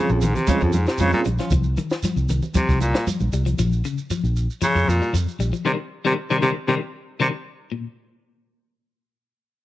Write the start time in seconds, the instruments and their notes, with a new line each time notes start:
Already playing: clean electric guitar F3, tonewheel organ C4 C#4 F4 G#4
0.00 baritone saxophone C#3
0.09 fingered electric bass A#1, baritone saxophone F2, shekere
0.21 baritone saxophone G#2, clean electric guitar D#3, closed hi-hat, low conga, shekere
0.35 baritone saxophone C3, muted clean electric guitar stroke, closed hi-hat, low conga, shekere
0.47 baritone saxophone C#3, clean electric guitar F3 G#3 C#4 F4, tonewheel organ C4 C#4 F4 G#4, kick, closed hi-hat, high conga, shekere
0.61 fingered electric bass F2, baritone saxophone F2, clean electric guitar F3, muted clean electric guitar stroke, kick, shekere
0.73 fingered electric bass F2, baritone saxophone G#2, muted clean electric guitar stroke, closed hi-hat, high conga, shekere
0.86 baritone saxophone C3, muted clean electric guitar stroke, snare, shekere
0.98 fingered electric bass F2, baritone saxophone C#3, clean electric guitar F3 G#3 C#4 F4, tonewheel organ C4 C#4 F4 G#4, closed hi-hat, high conga, shekere
1.12 baritone saxophone A#2, muted clean electric guitar stroke, high conga, shekere
1.24 fingered electric bass A#1, clean electric guitar G3, muted clean electric guitar stroke, closed hi-hat, high conga, shekere
1.38 clean electric guitar F3 C#4 F4, snare, closed hi-hat, shekere
1.50 fingered electric bass C2, clean electric guitar F3, kick, closed hi-hat, low conga, shekere
1.64 shekere
1.77 clean electric guitar D#3, closed hi-hat, high conga, shekere
1.90 snare, shekere
2.03 clean electric guitar F3, snare, closed hi-hat, high conga, shekere
2.16 fingered electric bass C2, shekere
2.29 clean electric guitar D#3, closed hi-hat, low conga, shekere
2.42 low conga, shekere
2.54 baritone saxophone C3, clean electric guitar F3, kick, closed hi-hat, high conga, shekere
2.69 fingered electric bass C2, clean electric guitar F3, kick, snare, shekere
2.80 baritone saxophone A#2, closed hi-hat, high conga, shekere
2.94 clean electric guitar G3, snare, closed hi-hat, shekere
3.07 clean electric guitar F3, closed hi-hat, high conga, shekere
3.20 fingered electric bass A#1, high conga, shekere
3.33 fingered electric bass C2, clean electric guitar G3, closed hi-hat, shekere
3.46 clean electric guitar F3, closed hi-hat, shekere
3.58 fingered electric bass A#1, clean electric guitar F3, shekere
3.72 shekere
3.85 clean electric guitar C#3, shekere
3.98 shekere
4.10 clean electric guitar F3, shekere
4.24 fingered electric bass A#1, shekere
4.36 shekere
4.50 shekere
4.62 baritone saxophone C#3, clean electric guitar F3, shekere
4.75 fingered electric bass F2, clean electric guitar F3, shekere
4.88 fingered electric bass F2, baritone saxophone A#2, shekere
5.02 clean electric guitar G3, shekere
5.13 fingered electric bass F2, clean electric guitar F3, shekere
5.28 shekere
5.39 fingered electric bass A#1, clean electric guitar G3, shekere
5.53 clean electric guitar F3, shekere
5.65 clean electric guitar C3 D#3 G3, baritone saxophone C3
6.05 clean electric guitar C3 D#3 G3, baritone saxophone C3
6.30 baritone saxophone C3, clean electric guitar C3 D#3 G3
6.42 baritone saxophone C3, clean electric guitar C3 D#3 G3
6.68 baritone saxophone C3, clean electric guitar C3 D#3 G3
7.20 clean electric guitar C3 D#3 G3, baritone saxophone C3
7.72 clean electric guitar A#2